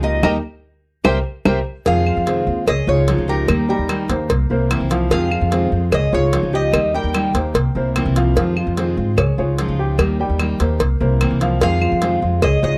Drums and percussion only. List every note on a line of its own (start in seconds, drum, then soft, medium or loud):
0.03 high bongo soft
0.23 low bongo medium
0.23 claves medium
1.05 low bongo loud
1.05 claves loud
1.45 low bongo loud
1.45 claves loud
1.86 cowbell loud
2.07 claves medium
2.27 cowbell medium
2.68 cowbell loud
2.68 claves medium
3.08 cowbell medium
3.48 cowbell loud
3.48 claves medium
3.89 cowbell medium
3.89 claves medium
4.10 cowbell medium
4.30 cowbell loud
4.71 cowbell medium
4.71 claves medium
4.91 cowbell medium
5.11 cowbell loud
5.32 claves medium
5.52 cowbell medium
5.92 cowbell loud
5.92 claves medium
6.33 cowbell medium
6.74 cowbell loud
6.74 claves medium
7.14 cowbell medium
7.14 claves medium
7.35 cowbell medium
7.55 cowbell loud
7.96 cowbell medium
7.96 claves medium
8.16 cowbell medium
8.37 cowbell loud
8.57 claves medium
8.77 cowbell medium
9.18 cowbell loud
9.18 claves medium
9.58 cowbell medium
9.99 cowbell loud
9.99 claves medium
10.39 cowbell medium
10.39 claves medium
10.60 cowbell medium
10.80 cowbell loud
11.21 cowbell medium
11.21 claves medium
11.41 cowbell medium
11.61 cowbell loud
11.82 claves medium
12.02 cowbell medium
12.42 cowbell loud
12.42 claves medium